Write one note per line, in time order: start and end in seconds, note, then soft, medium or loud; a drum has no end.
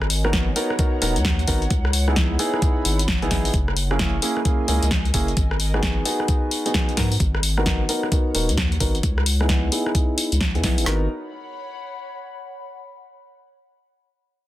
0.00 0.54 G#1 loud
0.00 0.49 A#4 medium
0.00 4.24 C#5 medium
0.00 0.42 D#5 medium
0.00 4.28 F#5 medium
0.00 0.48 G#5 medium
0.00 cross-stick medium
0.10 open hi-hat loud
0.19 1.71 A#5 medium
0.25 0.31 B3 medium
0.25 0.31 D#4 medium
0.25 0.31 F#4 medium
0.25 0.31 A#4 loud
0.25 cross-stick medium
0.33 0.47 B3 medium
0.33 0.47 D#4 medium
0.33 0.47 F#4 medium
0.33 0.47 A#4 loud
0.33 kick loud
0.33 snare loud
0.33 closed hi-hat medium
0.56 0.70 B3 loud
0.56 0.70 D#4 medium
0.56 0.70 F#4 medium
0.56 0.70 A#4 loud
0.56 open hi-hat loud
0.70 cross-stick medium
0.79 1.00 B3 medium
0.79 1.00 D#4 medium
0.79 1.00 F#4 medium
0.79 1.00 A#4 medium
0.79 kick loud
0.79 closed hi-hat medium
1.02 1.18 D#1 medium
1.02 1.16 B3 medium
1.02 1.16 D#4 medium
1.02 1.16 F#4 medium
1.02 1.16 A#4 loud
1.02 open hi-hat loud
1.16 1.45 D#2 loud
1.16 closed hi-hat medium
1.25 kick loud
1.25 snare loud
1.25 closed hi-hat medium
1.39 closed hi-hat soft
1.48 1.68 G#1 loud
1.48 1.61 B3 medium
1.48 1.61 D#4 medium
1.48 1.61 F#4 medium
1.48 1.61 A#4 medium
1.48 kick medium
1.48 open hi-hat loud
1.62 closed hi-hat soft
1.70 2.37 C#2 loud
1.70 kick loud
1.70 closed hi-hat medium
1.85 3.54 B5 medium
1.85 cross-stick medium
1.93 open hi-hat loud
2.08 2.15 B3 medium
2.08 2.15 D#4 medium
2.08 2.15 E4 medium
2.08 2.15 G#4 medium
2.08 cross-stick medium
2.16 kick loud
2.16 snare loud
2.16 closed hi-hat medium
2.39 2.97 B3 medium
2.39 2.97 D#4 medium
2.39 2.97 E4 medium
2.39 2.97 G#4 loud
2.39 open hi-hat loud
2.54 cross-stick medium
2.62 kick loud
2.62 closed hi-hat medium
2.85 3.18 G#1 loud
2.85 open hi-hat loud
2.99 closed hi-hat medium
3.08 kick loud
3.08 snare loud
3.08 closed hi-hat medium
3.22 3.29 G#1 loud
3.22 3.30 B3 loud
3.22 3.29 D#4 medium
3.22 3.30 E4 medium
3.22 3.30 G#4 loud
3.22 closed hi-hat soft
3.31 3.51 G#1 medium
3.31 3.50 B3 medium
3.31 3.50 D#4 medium
3.31 3.50 E4 medium
3.31 3.50 G#4 loud
3.31 kick medium
3.31 snare medium
3.31 open hi-hat loud
3.45 open hi-hat medium
3.54 4.20 F#1 loud
3.54 7.82 A#4 medium
3.54 kick loud
3.54 closed hi-hat medium
3.68 7.82 D#5 medium
3.68 cross-stick medium
3.77 open hi-hat loud
3.82 7.82 G#5 medium
3.91 3.98 A#3 medium
3.91 3.98 C#4 medium
3.91 3.98 E4 medium
3.91 3.97 G#4 loud
3.91 cross-stick medium
3.99 4.13 A#3 medium
3.99 4.13 E4 medium
3.99 kick loud
3.99 snare loud
3.99 closed hi-hat medium
4.22 4.36 A#3 medium
4.22 4.36 C#4 medium
4.22 4.36 E4 medium
4.22 4.36 G#4 loud
4.22 open hi-hat loud
4.37 cross-stick medium
4.45 4.66 A#3 medium
4.45 4.66 C#4 medium
4.45 4.66 E4 medium
4.45 4.66 G#4 medium
4.45 kick loud
4.45 closed hi-hat medium
4.68 4.80 C#2 medium
4.68 4.82 A#3 medium
4.68 4.82 C#4 medium
4.68 4.82 E4 medium
4.68 4.82 G#4 loud
4.68 open hi-hat loud
4.83 5.12 C#2 loud
4.83 closed hi-hat medium
4.91 kick loud
4.91 snare loud
4.91 closed hi-hat medium
5.05 closed hi-hat soft
5.14 5.34 F#1 loud
5.14 5.28 A#3 medium
5.14 5.28 C#4 medium
5.14 5.28 E4 medium
5.14 5.28 G#4 medium
5.14 kick medium
5.14 open hi-hat loud
5.28 closed hi-hat soft
5.37 6.03 G#1 loud
5.37 kick loud
5.37 closed hi-hat medium
5.51 cross-stick medium
5.60 open hi-hat loud
5.74 5.81 B3 medium
5.74 5.81 D#4 medium
5.74 5.81 F#4 medium
5.74 5.81 G#4 medium
5.74 cross-stick medium
5.83 6.02 B3 medium
5.83 6.02 D#4 medium
5.83 6.02 F#4 medium
5.83 6.02 G#4 medium
5.83 kick loud
5.83 snare loud
5.83 closed hi-hat medium
6.05 6.63 B3 medium
6.05 6.63 D#4 medium
6.05 6.63 F#4 medium
6.05 6.63 G#4 loud
6.05 open hi-hat loud
6.20 cross-stick medium
6.28 kick loud
6.28 closed hi-hat medium
6.51 open hi-hat loud
6.66 6.95 B3 medium
6.66 6.95 D#4 medium
6.66 6.95 F#4 medium
6.66 6.95 G#4 medium
6.66 closed hi-hat medium
6.74 kick loud
6.74 snare loud
6.74 closed hi-hat medium
6.89 closed hi-hat soft
6.97 7.17 G#2 medium
6.97 7.11 B3 medium
6.97 7.11 D#4 medium
6.97 7.11 F#4 medium
6.97 7.11 A#4 medium
6.97 10.85 C#5 medium
6.97 kick medium
6.97 snare medium
6.97 open hi-hat loud
7.08 10.87 F#5 medium
7.08 open hi-hat medium
7.20 7.86 G#1 loud
7.20 kick loud
7.20 closed hi-hat medium
7.35 cross-stick medium
7.43 open hi-hat loud
7.58 7.64 B3 medium
7.58 7.64 D#4 medium
7.58 7.64 F#4 medium
7.58 7.64 A#4 loud
7.58 cross-stick medium
7.62 9.03 A#5 medium
7.66 7.80 B3 medium
7.66 7.80 D#4 medium
7.66 7.80 F#4 medium
7.66 kick loud
7.66 snare loud
7.66 closed hi-hat medium
7.89 8.03 B3 medium
7.89 8.03 D#4 medium
7.89 8.03 F#4 medium
7.89 8.03 A#4 loud
7.89 open hi-hat loud
8.03 cross-stick medium
8.12 8.33 B3 medium
8.12 8.33 D#4 medium
8.12 8.33 F#4 medium
8.12 8.33 A#4 medium
8.12 kick loud
8.12 closed hi-hat medium
8.35 8.51 D#1 medium
8.35 8.48 B3 medium
8.35 8.48 D#4 medium
8.35 8.48 F#4 medium
8.35 8.48 A#4 loud
8.35 open hi-hat loud
8.49 8.78 D#2 loud
8.49 closed hi-hat medium
8.58 kick loud
8.58 snare loud
8.58 closed hi-hat medium
8.72 closed hi-hat soft
8.80 9.00 G#1 loud
8.80 8.94 B3 medium
8.80 8.94 D#4 medium
8.80 8.94 F#4 medium
8.80 8.94 A#4 loud
8.80 kick medium
8.80 open hi-hat loud
8.95 closed hi-hat soft
9.03 9.70 C#2 loud
9.03 kick loud
9.03 closed hi-hat medium
9.18 cross-stick medium
9.26 open hi-hat loud
9.41 9.48 B3 medium
9.41 9.48 D#4 medium
9.41 9.48 E4 medium
9.41 9.48 G#4 medium
9.41 cross-stick medium
9.49 9.68 B3 medium
9.49 9.68 E4 medium
9.49 kick loud
9.49 snare loud
9.49 closed hi-hat medium
9.65 10.87 B5 medium
9.72 10.29 B3 medium
9.72 10.29 D#4 medium
9.72 10.29 E4 medium
9.72 10.29 G#4 loud
9.72 open hi-hat loud
9.86 cross-stick medium
9.95 kick loud
9.95 closed hi-hat medium
10.18 open hi-hat loud
10.32 10.56 C#2 medium
10.32 closed hi-hat medium
10.41 kick loud
10.41 snare loud
10.41 closed hi-hat medium
10.55 10.62 E2 medium
10.55 10.62 B3 loud
10.55 10.62 D#4 medium
10.55 10.62 E4 medium
10.55 10.62 G#4 loud
10.55 closed hi-hat soft
10.63 10.79 B1 medium
10.63 10.83 B3 medium
10.63 10.83 D#4 medium
10.63 10.82 E4 medium
10.63 kick medium
10.63 snare medium
10.63 open hi-hat loud
10.78 10.85 G#1 medium
10.78 open hi-hat medium
10.86 11.08 G#1 loud
10.86 11.05 B3 medium
10.86 11.05 D#4 medium
10.86 11.05 F#4 medium
10.86 11.05 A#4 medium
10.86 12.66 C#5 medium
10.86 snare loud
10.95 12.65 F#5 medium
11.02 12.65 B5 medium